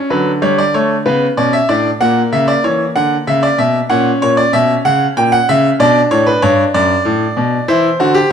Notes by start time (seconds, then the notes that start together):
0.10 D3 F#3 B4
0.42 G3 C#5
0.58 D5
0.74 A3 C#5
1.06 C#3 B3 B4
1.37 B2 C#4 D5
1.53 E5
1.69 A2 D4 D5
2.00 A#2 A#3 F#5
2.32 C#3 E5
2.48 D5
2.64 E3 C#5
2.96 D3 F#5
3.27 C#3 E5
3.43 D5
3.58 B2 E5
3.90 A#2 C#4 F#5
4.22 A#2 C#5
4.37 D5
4.53 B2 E5
4.85 C#3 F#5
5.17 A#2 G5
5.32 F#5
5.49 C#3 E5
5.80 B2 D4 D5
6.11 A2 C#5
6.27 B4
6.42 G2 C#5
6.74 F#2 D5
7.05 A2
7.37 B2
7.68 E3 E4 C5
8.00 D3 F#4
8.14 G4